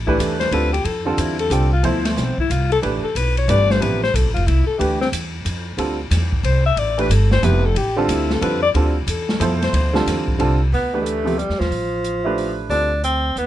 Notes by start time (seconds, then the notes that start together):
Already playing: A1
0.07 E3 A3 D4 E4 G4 B4, kick
0.19 E2 A4, hi-hat pedal, ride
0.40 C5, snare, ride
0.51 D2 D3 G3 C4 F4 A4 B4, ride
0.73 G4, ride
0.84 F2 A4, ride
1.05 D3 G3 C4 F4 A4
1.17 E2 E4, hi-hat pedal, ride
1.39 A4, ride
1.50 C2 D3 G3 C4 F4 G4 A4, hi-hat pedal, ride
1.73 F4
1.83 D2 B2 F3 E4 A4 C5, ride
2.05 A3, snare, ride
2.17 B1 C4, snare, hi-hat pedal
2.38 E4, muted upright bass stroke, kick
2.50 C2 F4, hi-hat pedal, ride
2.72 A4, ride
2.82 A1 E3 A3 D4 G4 B4, ride
3.03 A4, muted upright bass stroke
3.15 B1 B4, hi-hat pedal, ride
3.37 C#5, ride
3.48 G1 E3 A3 D4 G4 B4 D5, hi-hat pedal, ride
3.70 C5, snare
3.80 A1 C3 F3 B3 E4 G4 B4, ride
4.03 C5, snare
4.14 B1 A4, hi-hat pedal, ride
4.25 A1
4.34 F1 F4, ride
4.47 C2 E4, ride
4.67 A4, muted upright bass stroke
4.78 D2 E3 A3 D4 G4 B4, ride
5.01 C4, snare
5.12 E2, hi-hat pedal, ride
5.45 F2, hi-hat pedal, ride
5.77 D2 D3 G3 C4 F4 A4, ride
6.11 E2, snare, hi-hat pedal, ride
6.33 kick
6.43 C2 C5, ride
6.66 E5
6.76 A1 D5, ride
6.98 E3 A3 D4 G4 B4, ride
7.09 G1 A4, hi-hat pedal, ride
7.31 C5, snare
7.42 F1 C3 F3 B3 E4 G4 B4, hi-hat pedal, ride
7.66 A4
7.75 A1 G4, ride
7.96 D3 G3 C4 F4 A4
8.08 D2 E4, hi-hat pedal, ride
8.30 A4, snare
8.41 F2 D3 G3 C4 F4 A4 B4, ride
8.63 D5
8.74 D2 D3 G3 C4 F4 A4, ride
9.07 E2 A4, hi-hat pedal, ride
9.29 snare
9.40 F2 B2 F3 E4 A4 C5, hi-hat pedal, ride
9.62 C5, snare, ride
9.73 D2 C5, ride
9.93 D3 G3 C4 F4 A4, snare
10.06 E2, snare, hi-hat pedal, ride
10.28 kick
10.39 C2 D3 G3 C4 F4 A4, ride
10.72 D2 B3, open hi-hat
10.93 E3 A3 D4 G4 B4
11.01 G#3 A3
11.06 closed hi-hat
11.25 C3 F3 B3 E4 G4, open hi-hat
11.38 G3, closed hi-hat
11.49 E2, snare
11.59 D#2 F3, snare
11.71 A1, open hi-hat
12.04 closed hi-hat
12.24 A3 D4 E4 G4 B4
12.38 open hi-hat
12.69 D2 D3 G3 C4 D4 F4 A4, open hi-hat
13.04 C4, closed hi-hat
13.36 D#2 B3, closed hi-hat